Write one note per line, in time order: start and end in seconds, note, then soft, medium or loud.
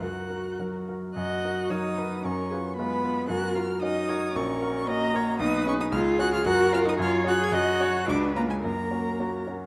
0.01 0.29 F#2 medium
0.01 0.88 F#4 medium
0.01 0.90 A#4 medium
0.01 0.57 F#6 medium
0.30 0.55 F#4 soft
0.30 0.56 A#4 soft
0.59 0.85 F#3 soft
0.59 0.85 F#4 soft
0.59 0.85 A#4 soft
0.88 1.13 F#4 soft
0.88 1.14 A#4 soft
1.14 1.42 F#2 medium
1.14 1.71 F#4 medium
1.14 1.72 D#5 medium
1.14 1.71 F#6 medium
1.45 1.69 F#4 soft
1.45 1.69 A#4 medium
1.70 1.94 F#3 medium
1.70 2.23 D#4 medium
1.70 1.95 F#4 medium
1.70 1.95 A#4 medium
1.70 1.99 C#5 medium
1.70 2.27 D#6 loud
1.98 2.22 F#4 medium
1.98 2.22 A#4 medium
1.98 2.26 B4 medium
2.24 2.50 F#2 medium
2.24 2.76 C#4 medium
2.24 2.50 A#4 medium
2.24 2.76 C#6 medium
2.51 2.75 F4 soft
2.51 2.59 G#4 medium
2.51 2.75 B4 medium
2.76 3.01 G#3 medium
2.76 3.30 B3 medium
2.76 3.02 F4 medium
2.76 3.29 B4 medium
2.76 3.02 B4 medium
2.76 3.28 B5 loud
3.04 3.27 F4 medium
3.04 3.27 B4 medium
3.29 3.55 F#2 medium
3.29 3.55 F#4 loud
3.29 3.81 A#4 medium
3.29 3.57 F#6 loud
3.55 3.63 F4 medium
3.55 3.79 F#4 medium
3.55 3.80 A#4 medium
3.55 3.82 F6 medium
3.81 4.07 C#4 medium
3.81 4.34 D#4 loud
3.81 4.06 F#4 medium
3.81 4.07 A#4 medium
3.81 4.10 D#5 medium
3.81 4.37 D#6 loud
4.09 4.33 F#4 medium
4.09 4.33 A#4 medium
4.09 4.37 C#5 medium
4.35 4.61 A#1 medium
4.35 4.89 C#4 medium
4.35 4.87 A#4 medium
4.35 4.88 C#6 loud
4.62 4.85 F#4 medium
4.62 4.86 A#4 medium
4.87 5.42 A#3 loud
4.87 5.12 C#4 medium
4.87 5.12 F#4 medium
4.87 5.13 A#4 medium
4.87 5.17 D#5 loud
4.87 5.39 A#5 loud
5.14 5.38 F#4 medium
5.14 5.38 A#4 medium
5.14 5.40 C#5 medium
5.40 5.66 B1 medium
5.40 5.65 D#4 loud
5.40 5.92 B4 loud
5.40 5.66 D#6 loud
5.65 5.71 C#4 loud
5.65 5.90 D#4 medium
5.65 5.90 G#4 medium
5.65 5.73 C#6 loud
5.80 5.86 D#4 loud
5.80 5.86 D#6 loud
5.92 6.18 C#2 loud
5.92 6.22 F4 loud
5.92 6.48 G#4 loud
5.92 6.00 F6 loud
6.19 6.43 C#4 medium
6.19 6.32 F#4 loud
6.19 6.43 G#4 medium
6.19 6.32 F#6 loud
6.33 6.38 F4 loud
6.33 6.46 F6 loud
6.45 6.72 F#2 medium
6.45 6.74 F#4 loud
6.45 6.99 A#4 loud
6.45 6.73 F#6 loud
6.73 6.97 C#4 medium
6.73 6.87 F4 loud
6.73 6.97 F#4 medium
6.73 6.79 F6 loud
6.85 6.99 D#4 loud
6.85 6.94 D#6 loud
6.99 7.25 F#2 loud
6.99 7.26 F4 loud
6.99 7.55 C#5 loud
6.99 7.10 F6 loud
7.24 7.49 C#4 medium
7.24 7.32 F#4 loud
7.24 7.50 G#4 medium
7.24 7.45 F#6 loud
7.40 7.56 G#4 loud
7.40 7.54 G#6 loud
7.52 7.79 F#2 medium
7.52 8.09 F#4 loud
7.52 7.82 D#5 loud
7.52 8.07 F#6 loud
7.80 8.05 C#4 medium
7.80 8.05 F#4 medium
7.80 8.07 C#5 loud
8.07 8.35 C#2 medium
8.07 8.36 D4 loud
8.07 8.62 B4 medium
8.07 8.17 D6 loud
8.36 8.49 A#3 medium
8.36 8.61 C#4 medium
8.36 8.61 F4 medium
8.36 8.42 A#5 loud
8.49 8.66 G#3 medium
8.49 8.56 G#5 medium
8.63 8.91 F#2 medium
8.63 9.47 A#3 medium
8.63 9.45 A#4 medium
8.63 9.45 A#5 loud
8.91 9.16 C#4 medium
8.91 9.16 F#4 medium
9.20 9.44 A#3 medium
9.20 9.44 C#4 medium
9.20 9.45 F#4 medium
9.47 9.66 C#4 medium
9.47 9.66 F#4 medium